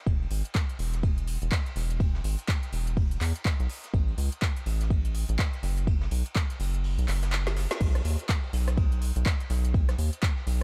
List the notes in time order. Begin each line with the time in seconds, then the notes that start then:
0.07 E1, kick, ride
0.22 ride
0.30 G#1, open hi-hat, ride
0.45 closed hi-hat
0.55 kick, snare, clap, ride
0.69 closed hi-hat, ride
0.79 E1, open hi-hat, ride
0.94 snare, closed hi-hat
1.03 kick, ride
1.17 closed hi-hat, ride
1.27 open hi-hat, ride
1.42 E1, closed hi-hat
1.51 kick, snare, clap, ride
1.66 snare, closed hi-hat
1.76 E1, snare, open hi-hat, ride
1.90 closed hi-hat
2.00 kick, ride
2.15 snare
2.24 G#1, open hi-hat, ride
2.39 closed hi-hat
2.48 kick, snare, clap, ride
2.63 snare, closed hi-hat
2.73 E1, open hi-hat, ride
2.87 closed hi-hat
2.97 kick, open hi-hat
3.11 closed hi-hat
3.21 E2, snare, clap, open hi-hat, ride
3.36 closed hi-hat
3.45 kick, snare, clap, ride
3.60 B1, closed hi-hat
3.69 open hi-hat, ride
3.84 snare, closed hi-hat
3.94 A1, kick, ride
4.08 ride
4.18 C#2, open hi-hat, ride
4.32 closed hi-hat
4.42 kick, snare, clap, ride
4.56 closed hi-hat, ride
4.66 A1, open hi-hat, ride
4.81 snare, closed hi-hat
4.90 kick, ride
5.05 closed hi-hat, ride
5.15 open hi-hat, ride
5.29 A1, closed hi-hat
5.38 kick, snare, clap, ride
5.53 snare, closed hi-hat
5.63 F#1, snare, open hi-hat, ride
5.78 closed hi-hat
5.87 kick, ride
6.01 snare
6.11 B1, open hi-hat, ride
6.26 closed hi-hat
6.35 kick, snare, clap, ride
6.50 snare, closed hi-hat
6.60 F#1, open hi-hat, ride
6.74 closed hi-hat
6.84 open hi-hat
6.98 B1, closed hi-hat
7.08 F#1, snare, clap, open hi-hat, ride
7.23 snare, closed hi-hat, ride
7.32 snare, clap, ride
7.47 snare, closed hi-hat, ride
7.57 snare, open hi-hat, ride
7.71 snare, closed hi-hat, ride
7.81 B1, kick, crash, ride
7.95 cross-stick, closed hi-hat, ride
8.05 D#2, open hi-hat, ride
8.19 closed hi-hat
8.29 kick, snare, clap, ride
8.43 ride
8.53 B1, open hi-hat, ride
8.67 cross-stick, snare, closed hi-hat
8.77 kick, ride
8.92 closed hi-hat, ride
9.02 open hi-hat, ride
9.16 B1, closed hi-hat
9.25 kick, snare, clap, ride
9.40 snare, closed hi-hat
9.50 B1, snare, open hi-hat, ride
9.65 closed hi-hat
9.74 kick, ride
9.89 cross-stick, snare, closed hi-hat
9.98 D#2, open hi-hat, ride
10.13 closed hi-hat
10.22 kick, snare, clap, ride
10.37 snare
10.47 B1, open hi-hat, ride